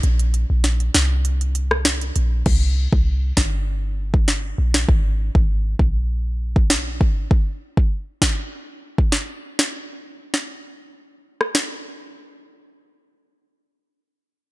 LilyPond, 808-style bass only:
\new Staff \with { instrumentName = "808-style bass" } { \clef bass \time 4/4 \key aes \lydian \tempo 4 = 99 bes,,8. bes,,8. c,2 bes,,8 | c,8. c,8. g,,2 bes,,8 | aes,,8. aes,,8. bes,,2 aes,,8 | r1 |
r1 | r1 | }